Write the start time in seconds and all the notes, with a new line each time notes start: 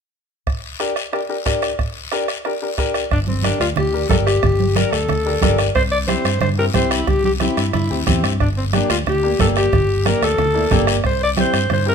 0.47 bombo low, bombo rim, long guiro
0.80 D4 G4 A#4, bombo rim, short guiro
0.96 bombo rim, short guiro
1.12 D4 G4 A#4, bombo rim, long guiro
1.29 D4 G4 A#4
1.45 D4 G4 A#4, bombo low, bombo rim, short guiro
1.62 bombo rim, short guiro
1.79 bombo low, bombo rim, long guiro
2.12 D4 G4 A#4, bombo rim, short guiro
2.28 bombo rim, short guiro
2.45 D4 G4 A#4, bombo rim, long guiro
2.62 D4 G4 A#4
2.78 D4 G4 A#4, bombo low, bombo rim, short guiro
2.94 bombo rim, short guiro
3.11 G1 D4, bombo low, bombo rim, long guiro
3.27 C4, high conga
3.42 D4 G4 A#4, bombo rim, high conga, short guiro
3.60 D2 F4, bombo rim, short guiro
3.76 D2 G4, bombo rim, low conga, long guiro
3.93 D4 G4 A#4
4.09 G1 D4 G4 A4 A#4, bombo low, bombo rim, high conga, short guiro
4.26 G4, bombo rim, short guiro
4.43 G1, bombo low, bombo rim, low conga, long guiro
4.60 high conga
4.76 D4 G4 A#4, bombo rim, high conga, short guiro
4.92 D2 A4, bombo rim, short guiro
5.08 D2, bombo rim, low conga, long guiro
5.26 D4 G4 A#4
5.41 G1 D4 G4 A#4, bombo low, bombo rim, high conga, low conga, short guiro
5.58 bombo rim, short guiro
5.75 C2 C5, bombo low, bombo rim, long guiro
5.92 D5
6.08 C4 E4 G4 C5, bombo rim, high conga, short guiro
6.25 G2, bombo rim, short guiro
6.41 G2 C5, bombo rim, low conga, long guiro
6.58 C4 E4 G4 A#4
6.74 C2 C4 E4 G4 C5, bombo low, bombo rim, high conga, short guiro
6.91 E4, bombo rim, short guiro
7.07 C2 G4, bombo low, bombo rim, low conga, long guiro
7.24 G4, high conga
7.40 C4 E4 G4, bombo rim, high conga, short guiro
7.57 G2, bombo rim, short guiro
7.73 G2 E4, bombo rim, low conga, long guiro
7.90 D2 C4 E4 G4
8.07 E2 C4 E4 G4, bombo low, bombo rim, high conga, short guiro
8.23 G2, bombo rim, short guiro
8.40 G1 D4, bombo low, bombo rim, long guiro
8.57 C4
8.73 A#3 D4 G4, bombo rim, high conga, short guiro
8.90 D2 F4, bombo rim, short guiro
9.06 D2 G4, bombo rim, low conga, long guiro
9.23 A#3 D4 G4
9.39 G1 A#3 D4 G4 A4, bombo low, bombo rim, high conga, short guiro
9.56 G4, bombo rim, short guiro
9.73 G1, bombo low, bombo rim, low conga, long guiro
10.05 A#3 D4 G4 A#4, bombo rim, high conga, short guiro
10.22 D2 A4, bombo rim, short guiro
10.38 D2, bombo rim, low conga, long guiro
10.54 A#3 D4 E4
10.71 G1 A#3 D4 G4, bombo low, bombo rim, high conga, low conga, short guiro
10.87 bombo rim, short guiro
11.04 C2 C5, bombo low, bombo rim, long guiro
11.24 D5
11.37 C4 E4 G4 C5, bombo rim, high conga, short guiro
11.53 G2, bombo rim, short guiro
11.70 G2 C5, bombo rim, low conga, long guiro
11.86 C4 E4 G4 A#4